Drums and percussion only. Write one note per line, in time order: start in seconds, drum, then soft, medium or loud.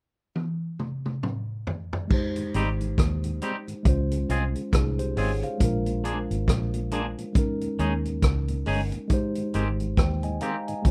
0.36 high tom medium
0.79 mid tom medium
1.06 mid tom medium
1.23 mid tom medium
1.67 floor tom medium
1.93 floor tom medium
2.11 kick loud
2.11 crash medium
2.36 closed hi-hat medium
2.54 closed hi-hat medium
2.81 closed hi-hat soft
2.98 kick loud
2.98 cross-stick loud
2.98 closed hi-hat medium
3.24 closed hi-hat medium
3.42 closed hi-hat medium
3.68 closed hi-hat soft
3.85 kick loud
3.85 closed hi-hat medium
4.11 closed hi-hat medium
4.30 closed hi-hat medium
4.55 closed hi-hat soft
4.73 kick loud
4.73 cross-stick loud
4.73 closed hi-hat medium
4.99 closed hi-hat medium
5.17 open hi-hat medium
5.43 closed hi-hat medium
5.60 kick loud
5.60 closed hi-hat medium
5.86 closed hi-hat medium
6.05 closed hi-hat medium
6.31 closed hi-hat soft
6.48 kick loud
6.48 cross-stick loud
6.48 closed hi-hat medium
6.74 closed hi-hat medium
6.91 closed hi-hat medium
7.18 closed hi-hat soft
7.35 kick loud
7.35 closed hi-hat medium
7.61 closed hi-hat soft
7.79 closed hi-hat medium
8.05 closed hi-hat medium
8.22 kick loud
8.22 cross-stick loud
8.22 closed hi-hat medium
8.48 closed hi-hat soft
8.66 open hi-hat medium
8.92 closed hi-hat medium
9.10 kick loud
9.10 closed hi-hat medium
9.35 closed hi-hat medium
9.54 closed hi-hat medium
9.80 closed hi-hat soft
9.97 kick loud
9.97 cross-stick loud
9.97 closed hi-hat medium
10.23 closed hi-hat soft
10.41 closed hi-hat medium
10.68 closed hi-hat soft
10.85 kick loud
10.85 closed hi-hat medium